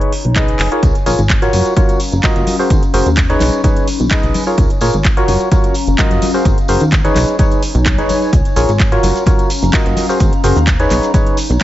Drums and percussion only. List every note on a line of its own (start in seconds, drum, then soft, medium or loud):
0.01 closed hi-hat soft
0.12 open hi-hat loud
0.25 closed hi-hat soft
0.36 kick loud
0.36 clap loud
0.36 closed hi-hat medium
0.48 closed hi-hat soft
0.59 clap medium
0.59 open hi-hat medium
0.72 closed hi-hat soft
0.83 kick loud
0.83 closed hi-hat medium
0.83 tambourine soft
0.95 closed hi-hat soft
0.95 tambourine soft
1.06 open hi-hat loud
1.06 tambourine medium
1.19 closed hi-hat soft
1.19 tambourine soft
1.29 kick loud
1.29 clap loud
1.29 closed hi-hat medium
1.29 tambourine medium
1.42 closed hi-hat soft
1.42 tambourine soft
1.53 open hi-hat medium
1.53 tambourine medium
1.53 high conga medium
1.65 closed hi-hat soft
1.65 tambourine soft
1.76 kick loud
1.76 closed hi-hat medium
1.76 tambourine soft
1.76 high conga medium
1.89 closed hi-hat soft
1.89 tambourine soft
2.00 open hi-hat loud
2.00 tambourine medium
2.12 closed hi-hat soft
2.12 tambourine soft
2.23 kick loud
2.23 clap loud
2.23 closed hi-hat medium
2.23 tambourine medium
2.23 high conga medium
2.36 closed hi-hat soft
2.36 tambourine soft
2.47 open hi-hat medium
2.47 tambourine medium
2.47 high conga medium
2.60 tambourine soft
2.70 kick loud
2.70 closed hi-hat medium
2.70 tambourine medium
2.83 closed hi-hat soft
2.83 tambourine soft
2.94 open hi-hat loud
2.94 tambourine medium
3.06 closed hi-hat soft
3.06 tambourine soft
3.17 kick loud
3.17 clap loud
3.17 closed hi-hat medium
3.17 tambourine soft
3.30 closed hi-hat soft
3.30 tambourine soft
3.40 clap soft
3.40 open hi-hat medium
3.40 tambourine loud
3.40 high conga medium
3.53 closed hi-hat soft
3.53 tambourine soft
3.64 kick loud
3.64 closed hi-hat medium
3.64 tambourine soft
3.64 high conga medium
3.76 closed hi-hat soft
3.76 tambourine soft
3.87 open hi-hat loud
3.87 tambourine loud
4.00 closed hi-hat soft
4.00 tambourine soft
4.11 kick loud
4.11 clap loud
4.11 closed hi-hat medium
4.11 tambourine medium
4.11 high conga medium
4.23 closed hi-hat soft
4.23 tambourine soft
4.34 open hi-hat loud
4.34 tambourine medium
4.34 high conga medium
4.47 tambourine soft
4.58 kick loud
4.58 closed hi-hat medium
4.58 tambourine medium
4.70 closed hi-hat soft
4.70 tambourine soft
4.81 open hi-hat loud
4.81 tambourine medium
4.93 closed hi-hat soft
4.93 tambourine soft
5.04 kick loud
5.04 clap loud
5.04 closed hi-hat medium
5.04 tambourine soft
5.17 closed hi-hat soft
5.17 tambourine soft
5.28 open hi-hat medium
5.28 tambourine medium
5.28 high conga medium
5.40 closed hi-hat soft
5.40 tambourine soft
5.51 kick loud
5.51 closed hi-hat medium
5.51 tambourine medium
5.51 high conga medium
5.64 closed hi-hat soft
5.64 tambourine soft
5.74 open hi-hat loud
5.74 tambourine medium
5.87 closed hi-hat soft
5.87 tambourine soft
5.98 kick loud
5.98 clap loud
5.98 closed hi-hat medium
5.98 tambourine medium
5.98 high conga medium
6.11 closed hi-hat soft
6.11 tambourine soft
6.22 open hi-hat loud
6.22 tambourine loud
6.22 high conga loud
6.35 tambourine soft
6.45 kick loud
6.45 closed hi-hat medium
6.45 tambourine medium
6.58 closed hi-hat soft
6.58 tambourine soft
6.68 open hi-hat loud
6.68 tambourine medium
6.80 closed hi-hat soft
6.80 tambourine soft
6.92 kick loud
6.92 clap loud
6.92 closed hi-hat medium
6.92 tambourine soft
7.04 closed hi-hat soft
7.04 tambourine soft
7.15 clap soft
7.15 open hi-hat medium
7.15 tambourine medium
7.15 high conga medium
7.28 closed hi-hat soft
7.28 tambourine soft
7.39 kick loud
7.39 closed hi-hat medium
7.39 tambourine medium
7.39 high conga medium
7.52 closed hi-hat soft
7.52 tambourine soft
7.62 open hi-hat loud
7.62 tambourine loud
7.75 closed hi-hat soft
7.75 tambourine soft
7.85 kick loud
7.85 clap loud
7.85 closed hi-hat medium
7.85 tambourine medium
7.85 high conga medium
7.98 closed hi-hat soft
7.98 tambourine soft
8.09 open hi-hat medium
8.09 tambourine loud
8.09 high conga medium
8.22 tambourine soft
8.33 kick loud
8.33 closed hi-hat medium
8.33 tambourine medium
8.33 shaker soft
8.45 closed hi-hat soft
8.45 tambourine soft
8.56 open hi-hat loud
8.56 tambourine medium
8.56 shaker medium
8.69 closed hi-hat soft
8.69 tambourine soft
8.69 shaker soft
8.80 kick loud
8.80 clap loud
8.80 closed hi-hat medium
8.80 tambourine soft
8.80 shaker soft
8.92 closed hi-hat soft
8.92 tambourine soft
9.03 open hi-hat medium
9.03 tambourine medium
9.03 high conga medium
9.03 shaker medium
9.16 closed hi-hat soft
9.16 tambourine soft
9.16 shaker soft
9.26 kick loud
9.26 closed hi-hat medium
9.26 tambourine soft
9.26 high conga medium
9.26 shaker soft
9.39 closed hi-hat soft
9.39 tambourine soft
9.50 open hi-hat loud
9.50 tambourine medium
9.50 shaker medium
9.63 closed hi-hat soft
9.63 tambourine soft
9.63 shaker soft
9.73 kick loud
9.73 clap loud
9.73 closed hi-hat medium
9.73 tambourine medium
9.73 high conga medium
9.73 shaker soft
9.86 closed hi-hat soft
9.86 tambourine soft
9.97 open hi-hat medium
9.97 tambourine medium
9.97 high conga medium
9.97 shaker medium
10.09 tambourine soft
10.09 shaker soft
10.20 kick loud
10.20 closed hi-hat medium
10.20 tambourine soft
10.20 shaker soft
10.33 closed hi-hat soft
10.33 tambourine soft
10.44 open hi-hat loud
10.44 tambourine medium
10.44 shaker medium
10.55 closed hi-hat soft
10.55 tambourine soft
10.55 shaker soft
10.67 kick loud
10.67 clap loud
10.67 closed hi-hat medium
10.67 tambourine soft
10.67 shaker soft
10.80 closed hi-hat soft
10.80 tambourine soft
10.90 clap soft
10.90 open hi-hat medium
10.90 tambourine medium
10.90 high conga medium
10.90 shaker medium
11.03 closed hi-hat soft
11.03 tambourine soft
11.03 shaker soft
11.14 kick loud
11.14 closed hi-hat medium
11.14 tambourine medium
11.14 high conga medium
11.14 shaker soft
11.27 closed hi-hat soft
11.27 tambourine soft
11.37 open hi-hat loud
11.37 tambourine medium
11.37 shaker medium
11.50 closed hi-hat soft
11.50 tambourine soft
11.50 shaker soft